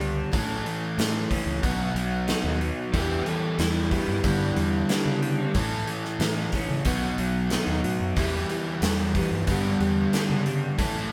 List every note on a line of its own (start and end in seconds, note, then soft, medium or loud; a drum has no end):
0.00 0.22 C#2 medium
0.00 0.31 G2 medium
0.00 0.33 G2 medium
0.00 0.31 D3 medium
0.00 0.31 G3 medium
0.00 0.32 G3 soft
0.00 0.32 B3 medium
0.00 0.32 B3 soft
0.00 0.32 D4 medium
0.00 0.33 D4 medium
0.00 0.32 D4 soft
0.00 0.32 G4 medium
0.00 0.32 G4 soft
0.00 open hi-hat soft
0.32 0.59 A1 medium
0.32 0.65 A2 medium
0.32 0.65 E3 medium
0.32 0.65 A3 medium
0.32 0.64 C#4 medium
0.32 0.63 A4 medium
0.32 kick loud
0.32 open hi-hat medium
0.64 1.63 E3 medium
0.64 0.98 A3 soft
0.64 0.98 C#4 soft
0.64 0.97 A4 soft
0.64 open hi-hat soft
0.98 1.23 A2 medium
0.98 1.30 E3 medium
0.98 1.31 A3 medium
0.98 1.30 C#4 medium
0.98 1.28 A4 medium
0.98 snare loud
0.98 open hi-hat medium
1.30 1.63 A3 soft
1.30 1.63 C#4 soft
1.30 1.63 A4 medium
1.30 kick medium
1.30 open hi-hat medium
1.46 1.59 C#2 medium
1.63 1.88 B1 medium
1.63 1.96 B2 medium
1.63 1.96 F#3 medium
1.63 1.96 B3 medium
1.63 1.96 D#4 medium
1.63 1.94 F#4 medium
1.63 kick medium
1.63 open hi-hat medium
1.94 2.33 B1 medium
1.94 2.59 F#3 medium
1.94 2.28 B3 soft
1.94 2.28 D#4 soft
1.94 2.28 F#4 medium
1.94 open hi-hat soft
2.28 2.61 F#3 medium
2.28 2.61 B3 medium
2.28 2.62 D#4 medium
2.28 2.61 F#4 medium
2.28 snare loud
2.28 open hi-hat medium
2.44 2.69 D#2 medium
2.60 2.93 F#3 medium
2.60 2.94 B3 soft
2.60 2.94 D#4 soft
2.60 2.94 F#4 soft
2.60 open hi-hat soft
2.93 3.19 E2 medium
2.93 3.26 E2 medium
2.93 3.26 B2 medium
2.93 3.27 E3 medium
2.93 3.27 G3 medium
2.93 3.26 E4 medium
2.93 3.25 G4 medium
2.93 3.26 B4 medium
2.93 kick loud
2.93 open hi-hat medium
3.26 3.57 E3 soft
3.26 3.58 G3 soft
3.26 3.59 E4 medium
3.26 3.59 G4 medium
3.26 3.58 A4 medium
3.26 open hi-hat soft
3.58 3.97 E2 medium
3.58 3.91 E3 medium
3.58 3.91 G3 medium
3.58 3.90 E4 medium
3.58 3.90 G4 medium
3.58 snare loud
3.58 open hi-hat medium
3.91 4.24 E3 soft
3.91 4.23 G3 medium
3.91 4.24 B3 medium
3.91 4.24 E4 soft
3.91 4.24 G4 medium
3.91 kick medium
3.91 open hi-hat soft
4.08 4.20 G2 medium
4.23 4.56 G2 medium
4.23 4.49 G2 loud
4.23 4.57 D3 medium
4.23 4.56 G3 medium
4.23 4.56 B3 medium
4.23 4.55 D4 medium
4.23 4.54 G4 medium
4.23 kick loud
4.23 open hi-hat medium
4.55 4.82 E2 medium
4.55 4.87 G3 soft
4.55 4.88 B3 soft
4.55 4.89 D4 medium
4.55 4.89 G4 soft
4.55 open hi-hat soft
4.89 5.22 G3 medium
4.89 5.22 B3 medium
4.89 5.23 D4 medium
4.89 5.20 G4 medium
4.89 snare loud
4.89 open hi-hat medium
5.05 5.44 C#3 medium
5.21 5.54 G3 soft
5.21 5.54 B3 soft
5.21 5.54 G4 medium
5.21 open hi-hat soft
5.54 5.87 A2 medium
5.54 5.80 A2 medium
5.54 5.87 E3 medium
5.54 5.88 A3 medium
5.54 5.86 C#4 medium
5.54 5.85 A4 medium
5.54 kick loud
5.54 open hi-hat medium
5.86 6.86 E3 medium
5.86 6.19 A3 soft
5.86 6.20 C#4 soft
5.86 6.20 A4 soft
5.86 open hi-hat soft
6.05 snare soft
6.19 6.45 A2 medium
6.19 6.53 E3 medium
6.19 6.53 A3 medium
6.19 6.52 C#4 medium
6.19 6.51 A4 medium
6.19 snare loud
6.19 open hi-hat medium
6.52 6.86 A3 soft
6.52 6.85 C#4 soft
6.52 6.85 A4 medium
6.52 kick medium
6.52 open hi-hat soft
6.69 6.82 C#3 medium
6.85 7.11 B1 loud
6.85 7.18 B2 medium
6.85 7.18 F#3 medium
6.85 7.19 B3 medium
6.85 7.18 D#4 medium
6.85 7.17 F#4 medium
6.85 kick medium
6.85 open hi-hat medium
7.17 7.56 B1 medium
7.17 7.83 F#3 medium
7.17 7.50 B3 soft
7.17 7.50 D#4 medium
7.17 7.51 F#4 soft
7.17 open hi-hat soft
7.50 7.83 F#3 medium
7.50 7.84 B3 medium
7.50 7.83 D#4 medium
7.50 7.82 F#4 medium
7.50 snare loud
7.50 open hi-hat medium
7.67 7.80 D#2 medium
7.84 7.98 A2 medium
7.84 8.17 F#3 medium
7.84 8.17 B3 soft
7.84 8.17 D#4 soft
7.84 8.16 F#4 soft
7.84 open hi-hat soft
8.00 8.15 F#2 medium
8.16 8.42 E2 loud
8.16 8.49 E2 medium
8.16 8.50 B2 medium
8.16 8.50 E3 medium
8.16 8.50 G3 medium
8.16 8.50 E4 medium
8.16 8.49 G4 medium
8.16 kick medium
8.16 open hi-hat medium
8.49 8.81 E3 soft
8.49 8.81 G3 soft
8.49 8.82 E4 soft
8.49 8.83 G4 medium
8.49 open hi-hat soft
8.82 9.20 E2 medium
8.82 9.15 E3 medium
8.82 9.15 G3 medium
8.82 9.15 E4 medium
8.82 9.14 G4 medium
8.82 snare loud
8.82 open hi-hat medium
9.15 9.49 E3 soft
9.15 9.48 G3 soft
9.15 9.48 B3 medium
9.15 9.48 E4 medium
9.15 9.48 G4 medium
9.15 kick medium
9.15 open hi-hat soft
9.31 9.44 G2 medium
9.47 9.73 G2 loud
9.47 9.81 G2 medium
9.47 9.81 D3 medium
9.47 9.81 G3 medium
9.47 9.81 B3 medium
9.47 9.80 D4 medium
9.47 9.79 G4 medium
9.47 kick medium
9.47 open hi-hat medium
9.80 10.06 E2 medium
9.80 10.12 G3 soft
9.80 10.13 B3 soft
9.80 10.14 D4 soft
9.80 10.13 G4 medium
9.80 open hi-hat soft
10.13 10.46 G3 medium
10.13 10.46 B3 medium
10.13 10.47 D4 medium
10.13 10.45 G4 medium
10.13 snare loud
10.13 open hi-hat medium
10.29 10.68 C#3 medium
10.46 10.79 G3 soft
10.46 10.80 B3 soft
10.46 10.79 G4 medium
10.46 open hi-hat soft
10.78 11.04 A2 medium
10.78 11.12 A2 medium
10.78 11.12 E3 medium
10.78 11.12 A3 medium
10.78 11.11 C#4 medium
10.78 11.11 A4 medium
10.78 kick medium
10.78 open hi-hat medium